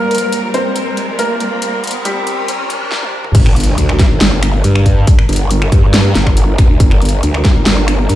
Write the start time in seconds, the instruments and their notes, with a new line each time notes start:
Already playing: ambient pad G3 F4 A#4 D5, string section G3 C4 A#4, felt piano A#3 A#4, riser
0.11 closed hi-hat
0.15 closed hi-hat
0.18 closed hi-hat
0.33 closed hi-hat
0.54 felt piano C4 C5, closed hi-hat
0.76 closed hi-hat
0.97 closed hi-hat
1.19 felt piano A#3 A#4, closed hi-hat
1.40 closed hi-hat
1.62 closed hi-hat
1.84 closed hi-hat
1.87 closed hi-hat
1.91 closed hi-hat
2.05 felt piano G3 G4, closed hi-hat
2.27 closed hi-hat
2.48 closed hi-hat, swell
2.70 closed hi-hat
2.92 snare
3.03 high tom
3.24 mid tom
3.35 wobble bass G1, string section G3 D4 A#4, kick, closed hi-hat, crash, impact
3.46 finger snap
3.56 closed hi-hat
3.60 closed hi-hat
3.63 closed hi-hat
3.78 wobble bass D2, closed hi-hat
3.89 finger snap
3.99 kick, snare, closed hi-hat
4.11 wobble bass G1
4.21 wobble bass G1, snare, closed hi-hat
4.43 finger snap, closed hi-hat
4.64 wobble bass G2, closed hi-hat
4.75 finger snap
4.86 kick, closed hi-hat
5.07 kick, closed hi-hat
5.19 finger snap
5.29 wobble bass G1, closed hi-hat
5.33 closed hi-hat
5.36 closed hi-hat
5.51 closed hi-hat
5.62 finger snap
5.72 wobble bass G2, kick, closed hi-hat
5.94 snare, closed hi-hat
6.15 wobble bass G1, snare, closed hi-hat
6.27 finger snap, kick
6.37 closed hi-hat
6.58 wobble bass A1, finger snap, kick, closed hi-hat
6.70 wobble bass D2
6.80 wobble bass G1, kick, closed hi-hat
6.91 finger snap
7.02 closed hi-hat
7.05 closed hi-hat
7.09 closed hi-hat
7.23 wobble bass D2, closed hi-hat
7.34 finger snap
7.45 kick, snare, closed hi-hat
7.56 wobble bass G1
7.66 wobble bass G1, snare, closed hi-hat
7.88 finger snap, closed hi-hat
8.09 wobble bass G2, closed hi-hat